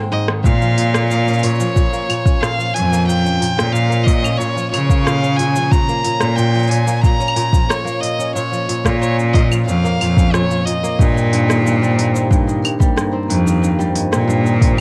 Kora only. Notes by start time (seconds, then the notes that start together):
Already playing: G#2 D#3 G#3 C4
0.12 G#2
0.28 D#3
0.45 A#2
0.61 F3
0.78 A#2
0.94 A#3
1.10 A#2
1.27 C#4
1.43 A#2
1.60 F3
1.76 A#2
1.93 A#3
2.09 A#2
2.26 C#4
2.42 A#2
2.58 F3
2.74 A#2
2.92 A#3
3.08 A#2
3.24 C#4
3.40 A#2
3.57 F3
3.73 A#2
3.89 A#3
4.06 A#2
4.23 C#4
4.39 A#2
4.56 F3
4.72 A#2
4.89 A#3
5.06 A#2
5.22 C#4
5.39 A#2
5.55 F3
5.72 A#2
5.89 A#3
6.05 A#2
6.21 C#4
6.38 A#2
6.54 F3
6.70 A#2
6.87 A#3
7.03 A#2
7.20 C#4
7.36 A#2
7.52 F3
7.69 A#2
7.85 A#3
8.02 A#2
8.19 C#4
8.35 A#2
8.52 F3
8.69 A#2
8.85 A#3
9.01 A#2
9.18 C#4
9.34 A#2
9.51 F3
9.68 A#2
9.84 A#3
10.01 A#2
10.17 C#4
10.34 A#2
10.50 F3
10.67 A#2
10.83 A#3
11.00 G2
11.16 C4
11.33 G2
11.49 D#3
11.66 G2
11.82 G3
11.98 G2
12.14 C4
12.31 G2
12.47 D#3
12.64 G2
12.80 G3
12.97 G2
13.13 C4
13.30 G2
13.46 D#3
13.62 G2
13.79 G3
13.95 G2
14.12 C4
14.28 G2
14.44 D#3
14.61 G2
14.77 G3